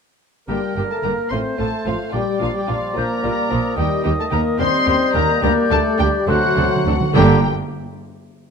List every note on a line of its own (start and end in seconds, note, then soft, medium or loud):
0.48 0.58 G1 soft
0.48 0.56 G2 soft
0.48 0.58 D3 soft
0.48 0.75 G3 medium
0.48 1.34 A#3 soft
0.48 0.58 A#3 soft
0.48 0.57 D4 soft
0.48 0.60 G4 soft
0.48 0.57 G4 soft
0.48 1.32 A#4 soft
0.48 0.74 G5 medium
0.48 1.34 A#5 soft
0.76 0.85 G1 soft
0.76 0.84 G2 soft
0.76 0.86 D3 soft
0.76 0.91 G3 medium
0.76 0.86 A#3 soft
0.76 0.84 D4 soft
0.76 0.83 G4 medium
0.76 0.84 G4 soft
0.76 0.81 G5 medium
0.89 1.05 A3 soft
0.89 1.07 A4 soft
0.89 0.96 A5 medium
1.03 1.12 G1 soft
1.03 1.12 G2 soft
1.03 1.13 D3 soft
1.03 1.32 A#3 soft
1.03 1.13 A#3 soft
1.03 1.12 D4 soft
1.03 1.12 G4 soft
1.03 1.30 A#4 medium
1.03 1.11 A#5 medium
1.30 1.40 A1 soft
1.30 1.40 A2 medium
1.30 1.41 F3 soft
1.30 2.13 A3 soft
1.30 1.41 A3 soft
1.30 1.59 C4 medium
1.30 1.40 C4 soft
1.30 1.40 F4 soft
1.30 2.12 C5 soft
1.30 1.61 C5 medium
1.30 1.38 C6 medium
1.30 2.13 C6 soft
1.57 1.68 A1 soft
1.57 1.67 A2 soft
1.57 1.68 F3 soft
1.57 1.86 A3 medium
1.57 1.68 A3 soft
1.57 1.67 C4 soft
1.57 1.66 F4 soft
1.57 1.86 A4 medium
1.57 1.85 A5 medium
1.85 1.94 A1 soft
1.85 1.94 A2 soft
1.85 1.93 F3 soft
1.85 1.99 F3 soft
1.85 1.94 A3 soft
1.85 1.93 C4 soft
1.85 1.93 F4 soft
1.85 2.14 F4 soft
1.85 2.13 F5 medium
2.13 2.22 A#1 medium
2.13 2.21 A#2 medium
2.13 2.21 F3 soft
2.13 2.40 G3 medium
2.13 2.98 G3 soft
2.13 2.21 A#3 soft
2.13 2.21 D4 soft
2.13 2.21 F4 soft
2.13 2.27 G4 medium
2.13 3.74 D5 soft
2.13 2.41 G5 medium
2.13 2.95 D6 medium
2.40 2.50 A#1 medium
2.40 2.49 A#2 soft
2.40 2.49 F3 soft
2.40 2.55 F3 medium
2.40 2.49 A#3 soft
2.40 2.48 D4 soft
2.40 2.48 F4 soft
2.40 2.54 F5 medium
2.55 2.69 G3 soft
2.55 2.61 G4 soft
2.55 2.69 G5 medium
2.67 2.77 A#1 soft
2.67 2.77 A#2 soft
2.67 2.97 F3 soft
2.67 2.77 F3 soft
2.67 2.77 A#3 soft
2.67 2.76 D4 soft
2.67 2.75 F4 soft
2.67 2.99 F4 medium
2.67 2.97 F5 medium
2.95 3.05 A#1 soft
2.95 3.05 A#2 medium
2.95 3.25 F3 soft
2.95 3.05 F3 soft
2.95 3.77 A#3 medium
2.95 3.05 A#3 soft
2.95 3.05 D4 soft
2.95 3.04 F4 soft
2.95 3.77 A#4 medium
2.95 3.76 A#5 medium
2.95 3.03 G6 medium
3.24 3.32 A#1 medium
3.24 3.32 A#2 soft
3.24 3.33 F3 soft
3.24 3.52 G3 medium
3.24 3.33 A#3 soft
3.24 3.32 D4 soft
3.24 3.32 F4 soft
3.24 3.30 F6 soft
3.50 3.59 A#1 medium
3.50 3.60 A#2 medium
3.50 3.77 F3 medium
3.50 3.59 F3 soft
3.50 3.59 A#3 soft
3.50 3.58 D4 soft
3.50 3.58 F4 soft
3.50 4.57 D#6 medium
3.77 3.86 D#2 medium
3.77 4.58 D#3 soft
3.77 3.86 D#3 medium
3.77 4.04 G3 medium
3.77 3.86 A#3 medium
3.77 3.85 D#4 soft
3.77 3.85 G4 medium
3.77 4.04 G4 medium
3.77 4.58 D#5 soft
3.77 4.04 G5 medium
4.04 4.13 D#2 medium
4.04 4.12 D#3 medium
4.04 4.11 G3 medium
4.04 4.13 A#3 medium
4.04 4.12 D#4 medium
4.04 4.12 G4 medium
4.04 4.11 G4 medium
4.04 4.10 G5 medium
4.18 4.25 A3 medium
4.18 4.24 A4 medium
4.18 4.25 A5 medium
4.30 4.40 D#2 medium
4.30 4.40 D#3 medium
4.30 4.40 A#3 soft
4.30 4.59 A#3 medium
4.30 4.39 D#4 medium
4.30 4.38 G4 medium
4.30 4.62 A#4 medium
4.30 4.40 A#5 medium
4.58 4.67 D#2 medium
4.58 4.68 D#2 medium
4.58 4.68 D#3 soft
4.58 5.41 G3 medium
4.58 4.68 A#3 soft
4.58 5.15 C4 medium
4.58 4.67 C#4 medium
4.58 4.66 G4 medium
4.58 5.14 C5 medium
4.58 5.45 D#5 medium
4.58 5.14 C6 loud
4.58 6.24 G6 medium
4.85 4.95 D#2 medium
4.85 4.95 D#3 medium
4.85 4.95 A#3 medium
4.85 4.93 C#4 medium
4.85 4.93 G4 medium
5.13 5.22 D#2 medium
5.13 5.23 D#2 medium
5.13 5.22 D#3 medium
5.13 5.22 A#3 medium
5.13 5.41 A#3 medium
5.13 5.21 C#4 medium
5.13 5.21 G4 medium
5.13 5.27 A#4 medium
5.13 5.42 A#5 medium
5.42 5.51 D2 medium
5.42 5.51 G3 medium
5.42 6.30 G3 medium
5.42 5.70 A#3 medium
5.42 5.51 A#3 medium
5.42 5.50 D4 medium
5.42 5.50 G4 medium
5.42 5.74 A#4 medium
5.42 6.27 D5 medium
5.42 5.51 A#5 medium
5.70 5.79 D2 medium
5.70 5.79 G3 medium
5.70 5.99 A3 medium
5.70 5.78 A#3 medium
5.70 5.78 D4 medium
5.70 5.78 G4 medium
5.70 6.02 A4 medium
5.70 5.79 A5 loud
5.98 6.07 D2 medium
5.98 6.07 G3 medium
5.98 6.28 G3 medium
5.98 6.06 A#3 medium
5.98 6.08 D4 medium
5.98 6.07 G4 medium
5.98 6.28 G4 medium
5.98 6.06 G5 medium
6.27 6.35 D2 medium
6.27 6.36 D2 medium
6.27 6.35 D3 medium
6.27 6.35 D3 soft
6.27 7.16 F#3 medium
6.27 6.87 A3 medium
6.27 6.35 C4 medium
6.27 6.35 D4 medium
6.27 7.15 F#4 medium
6.27 6.36 A4 medium
6.27 6.85 C5 medium
6.27 7.14 F#5 medium
6.27 6.71 F#6 medium
6.36 6.43 D3 soft
6.44 6.51 D3 soft
6.52 6.59 D3 medium
6.52 6.64 D3 medium
6.56 6.65 D2 medium
6.56 6.64 C4 medium
6.56 6.65 D4 medium
6.56 6.65 A4 medium
6.60 6.67 D3 soft
6.68 6.75 D3 medium
6.76 6.84 D3 medium
6.86 6.95 D2 medium
6.86 6.94 D3 medium
6.86 6.94 C4 medium
6.86 6.95 D4 medium
6.86 6.95 A4 medium
6.93 6.99 D3 medium
7.01 7.08 D3 medium
7.15 7.48 G1 medium
7.15 7.47 G2 medium
7.15 7.43 G2 medium
7.15 7.47 D3 medium
7.15 7.39 D3 medium
7.15 7.41 G3 medium
7.15 7.47 A#3 medium
7.15 7.48 D4 medium
7.15 7.40 G4 medium
7.15 7.48 G4 medium
7.15 7.41 G4 medium
7.15 7.47 G5 medium
7.15 7.47 A#5 medium